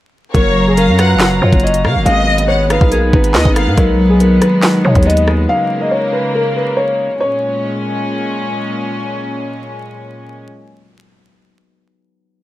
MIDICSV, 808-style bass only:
0, 0, Header, 1, 2, 480
1, 0, Start_track
1, 0, Tempo, 428571
1, 388, Time_signature, 4, 2, 24, 8
1, 13922, End_track
2, 0, Start_track
2, 0, Title_t, "808-style bass"
2, 0, Program_c, 0, 38
2, 387, Note_on_c, 0, 30, 108
2, 987, Note_on_c, 0, 42, 103
2, 1004, Note_off_c, 0, 30, 0
2, 1287, Note_on_c, 0, 30, 98
2, 1304, Note_off_c, 0, 42, 0
2, 1572, Note_off_c, 0, 30, 0
2, 1588, Note_on_c, 0, 42, 107
2, 1703, Note_off_c, 0, 42, 0
2, 1707, Note_on_c, 0, 30, 103
2, 2068, Note_on_c, 0, 49, 97
2, 2085, Note_off_c, 0, 30, 0
2, 2187, Note_on_c, 0, 30, 100
2, 2204, Note_off_c, 0, 49, 0
2, 2301, Note_off_c, 0, 30, 0
2, 2307, Note_on_c, 0, 32, 110
2, 3114, Note_off_c, 0, 32, 0
2, 3149, Note_on_c, 0, 35, 102
2, 3494, Note_off_c, 0, 35, 0
2, 3508, Note_on_c, 0, 32, 102
2, 3747, Note_on_c, 0, 39, 101
2, 3764, Note_off_c, 0, 32, 0
2, 3861, Note_off_c, 0, 39, 0
2, 3866, Note_on_c, 0, 32, 109
2, 4108, Note_on_c, 0, 44, 97
2, 4125, Note_off_c, 0, 32, 0
2, 4222, Note_off_c, 0, 44, 0
2, 4228, Note_on_c, 0, 35, 112
2, 4919, Note_off_c, 0, 35, 0
2, 5428, Note_on_c, 0, 47, 103
2, 5543, Note_off_c, 0, 47, 0
2, 5548, Note_on_c, 0, 39, 101
2, 6124, Note_off_c, 0, 39, 0
2, 13922, End_track
0, 0, End_of_file